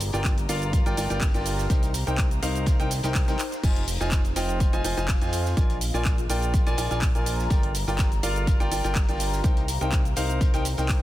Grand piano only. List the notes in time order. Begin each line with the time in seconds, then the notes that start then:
0.13 F4 A#4 D5 G5
0.49 F4 A#4 D5 F5
0.86 F4 A#4 D5 G5
0.97 F4 A#4 D5 G5
1.10 F4 A#4 D5 G5
1.34 F4 A#4 D5 G5
1.70 D#4 A#4 C5 G5
2.07 D#4 A#4 C5 G5
2.43 D#4 A#4 C5 F5
2.80 D#4 A#4 C5 G5
3.04 D#4 A#4 C5 G5
3.28 D#4 A#4 C5 G5
3.64 F4 C5 D#5 G#5
4.01 F4 C5 D#5 G#5
4.36 F4 C5 D#5 G5
4.73 F4 C5 D#5 G#5
4.85 F4 C5 D#5 G#5
4.97 F4 C5 D#5 G#5
5.22 F4 C5 D#5 G#5
5.57 F4 A#4 D5 G#5
5.94 F4 A#4 D5 G#5
6.30 F4 A#4 D5 G5
6.67 F4 A#4 D5 G#5
6.78 F4 A#4 D5 G#5
6.91 F4 A#4 D5 G#5
7.15 F4 A#4 D5 G#5
7.51 F4 A#4 D5 G5
7.88 F4 A#4 D5 G5
8.23 F4 A#4 D5 F5
8.60 F4 A#4 D5 G5
8.71 F4 A#4 D5 G5
8.84 F4 A#4 D5 G5
9.09 F4 A#4 D5 G5
9.44 D#4 A#4 C5 G5
9.81 D#4 A#4 C5 G5
10.17 D#4 A#4 C5 F5
10.54 D#4 A#4 C5 G5
10.78 D#4 A#4 C5 G5